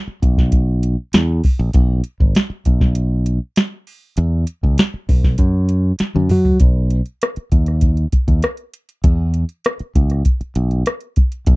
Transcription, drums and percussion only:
0.22 kick medium
0.22 closed hi-hat medium
0.38 kick medium
0.38 snare soft
0.52 kick medium
0.52 closed hi-hat medium
0.83 closed hi-hat medium
1.13 snare medium
1.13 closed hi-hat loud
1.44 kick medium
1.44 open hi-hat medium
1.73 kick loud
1.73 closed hi-hat medium
2.04 closed hi-hat medium
2.20 kick medium
2.35 snare loud
2.35 closed hi-hat medium
2.65 kick medium
2.65 closed hi-hat medium
2.81 kick medium
2.81 snare soft
2.95 closed hi-hat medium
3.26 closed hi-hat medium
3.56 snare loud
3.56 closed hi-hat medium
3.87 open hi-hat medium
4.17 closed hi-hat medium
4.47 closed hi-hat medium
4.63 kick medium
4.78 snare loud
4.78 closed hi-hat medium
5.09 kick loud
5.09 open hi-hat soft
5.24 kick medium
5.24 snare soft
5.38 kick medium
5.38 closed hi-hat medium
5.69 closed hi-hat medium
5.99 snare medium
5.99 closed hi-hat medium
6.15 high tom medium
6.29 mid tom medium
6.29 open hi-hat medium
6.45 floor tom medium
6.60 kick medium
6.60 closed hi-hat medium
6.90 closed hi-hat medium
7.06 closed hi-hat soft
7.22 cross-stick loud
7.22 closed hi-hat medium
7.36 closed hi-hat soft
7.52 kick medium
7.52 closed hi-hat medium
7.66 cross-stick soft
7.66 closed hi-hat soft
7.81 kick medium
7.81 closed hi-hat medium
7.97 closed hi-hat soft
8.12 kick medium
8.12 closed hi-hat medium
8.28 kick medium
8.28 closed hi-hat soft
8.42 cross-stick medium
8.42 closed hi-hat medium
8.57 closed hi-hat soft
8.74 closed hi-hat medium
8.89 closed hi-hat soft
9.04 kick medium
9.04 closed hi-hat medium
9.34 closed hi-hat medium
9.49 closed hi-hat soft
9.65 cross-stick loud
9.65 closed hi-hat medium
9.79 closed hi-hat soft
9.95 kick medium
9.95 closed hi-hat medium
10.10 cross-stick soft
10.10 closed hi-hat soft
10.25 kick medium
10.25 closed hi-hat medium
10.41 closed hi-hat soft
10.55 closed hi-hat medium
10.71 closed hi-hat soft
10.86 cross-stick medium
10.86 closed hi-hat medium
11.01 closed hi-hat soft
11.16 kick medium
11.16 closed hi-hat medium
11.32 closed hi-hat soft
11.46 kick loud
11.46 closed hi-hat medium

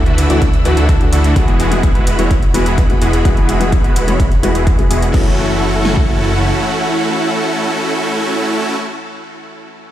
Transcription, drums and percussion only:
0.06 closed hi-hat soft
0.18 closed hi-hat medium
0.30 closed hi-hat soft
0.42 kick loud
0.42 closed hi-hat soft
0.54 closed hi-hat soft
0.65 closed hi-hat medium
0.77 closed hi-hat soft
0.89 kick loud
0.89 closed hi-hat soft
1.01 closed hi-hat soft
1.13 closed hi-hat medium
1.24 closed hi-hat soft
1.36 kick loud
1.36 closed hi-hat soft
1.48 closed hi-hat soft
1.60 closed hi-hat medium
1.72 closed hi-hat soft
1.83 kick loud
1.83 closed hi-hat soft
1.95 closed hi-hat soft
2.07 closed hi-hat medium
2.19 closed hi-hat soft
2.31 kick loud
2.31 closed hi-hat soft
2.43 closed hi-hat soft
2.54 closed hi-hat medium
2.66 closed hi-hat soft
2.78 kick loud
2.78 closed hi-hat soft
2.90 closed hi-hat soft
3.02 closed hi-hat medium
3.13 closed hi-hat soft
3.25 kick loud
3.25 closed hi-hat soft
3.37 closed hi-hat soft
3.49 closed hi-hat medium
3.61 closed hi-hat soft
3.72 kick loud
3.72 closed hi-hat soft
3.84 closed hi-hat soft
3.96 closed hi-hat medium
4.08 closed hi-hat soft
4.20 kick loud
4.20 closed hi-hat soft
4.32 closed hi-hat soft
4.43 closed hi-hat medium
4.55 closed hi-hat soft
4.67 kick loud
4.67 closed hi-hat soft
4.79 closed hi-hat soft
4.91 closed hi-hat medium
5.02 closed hi-hat soft
5.14 kick loud
5.14 crash medium
5.85 snare medium
5.97 kick medium

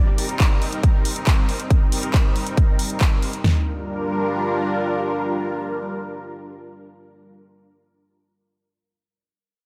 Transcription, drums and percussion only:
0.18 open hi-hat loud
0.29 closed hi-hat medium
0.40 kick loud
0.40 clap loud
0.40 closed hi-hat medium
0.62 open hi-hat medium
0.73 closed hi-hat medium
0.83 kick loud
0.83 closed hi-hat medium
1.05 open hi-hat loud
1.16 closed hi-hat medium
1.27 kick loud
1.27 clap loud
1.27 closed hi-hat medium
1.49 open hi-hat medium
1.60 closed hi-hat medium
1.70 kick loud
1.70 closed hi-hat medium
1.92 open hi-hat loud
2.03 closed hi-hat medium
2.14 kick loud
2.14 clap loud
2.14 closed hi-hat medium
2.36 open hi-hat medium
2.47 closed hi-hat medium
2.57 kick loud
2.57 closed hi-hat medium
2.79 open hi-hat loud
2.90 closed hi-hat medium
3.01 kick loud
3.01 clap loud
3.01 closed hi-hat medium
3.23 open hi-hat medium
3.33 closed hi-hat medium
3.44 snare loud
3.44 floor tom loud

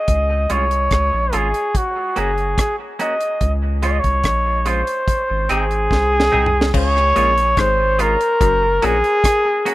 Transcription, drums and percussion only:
0.08 kick loud
0.08 closed hi-hat medium
0.50 closed hi-hat medium
0.71 closed hi-hat soft
0.91 kick loud
0.91 cross-stick loud
0.91 closed hi-hat medium
1.33 closed hi-hat medium
1.54 closed hi-hat medium
1.75 kick loud
1.75 closed hi-hat medium
2.16 closed hi-hat medium
2.38 closed hi-hat soft
2.58 kick loud
2.58 cross-stick loud
2.58 closed hi-hat medium
3.00 closed hi-hat medium
3.21 closed hi-hat medium
3.41 kick loud
3.41 closed hi-hat medium
3.83 closed hi-hat medium
4.04 kick medium
4.04 closed hi-hat soft
4.24 kick loud
4.24 cross-stick loud
4.24 closed hi-hat medium
4.66 closed hi-hat medium
4.87 closed hi-hat medium
5.08 kick loud
5.08 closed hi-hat medium
5.49 closed hi-hat medium
5.71 closed hi-hat soft
5.91 kick loud
5.91 snare medium
6.20 snare medium
6.33 mid tom medium
6.46 floor tom medium
6.61 snare medium
6.74 kick loud
6.74 crash loud
6.97 cross-stick medium
7.16 closed hi-hat medium
7.38 closed hi-hat soft
7.57 kick loud
7.57 cross-stick loud
7.57 closed hi-hat medium
7.99 closed hi-hat medium
8.21 closed hi-hat medium
8.41 kick loud
8.41 closed hi-hat medium
8.82 closed hi-hat medium
9.04 closed hi-hat soft
9.24 kick loud
9.24 cross-stick loud
9.24 closed hi-hat loud
9.66 closed hi-hat medium

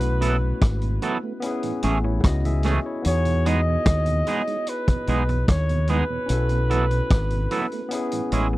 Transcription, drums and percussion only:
0.00 closed hi-hat medium
0.22 closed hi-hat medium
0.62 kick loud
0.62 cross-stick loud
0.62 closed hi-hat loud
0.81 closed hi-hat soft
1.02 closed hi-hat medium
1.42 closed hi-hat medium
1.63 closed hi-hat medium
1.82 closed hi-hat medium
2.24 kick loud
2.24 cross-stick loud
2.24 closed hi-hat medium
2.45 closed hi-hat medium
2.63 cross-stick medium
2.63 closed hi-hat medium
3.05 closed hi-hat medium
3.25 closed hi-hat medium
3.46 closed hi-hat medium
3.86 kick loud
3.86 cross-stick loud
3.86 closed hi-hat loud
4.06 closed hi-hat medium
4.27 closed hi-hat medium
4.47 closed hi-hat soft
4.67 closed hi-hat medium
4.88 kick medium
4.88 closed hi-hat medium
5.07 closed hi-hat medium
5.29 closed hi-hat soft
5.48 kick loud
5.48 cross-stick loud
5.48 closed hi-hat loud
5.69 closed hi-hat medium
5.88 closed hi-hat medium
6.29 closed hi-hat loud
6.49 closed hi-hat medium
6.71 closed hi-hat medium
6.91 closed hi-hat soft
7.10 kick loud
7.10 cross-stick loud
7.10 closed hi-hat loud
7.30 closed hi-hat soft
7.51 closed hi-hat medium
7.72 closed hi-hat soft
7.91 closed hi-hat medium
8.12 closed hi-hat medium
8.32 closed hi-hat medium

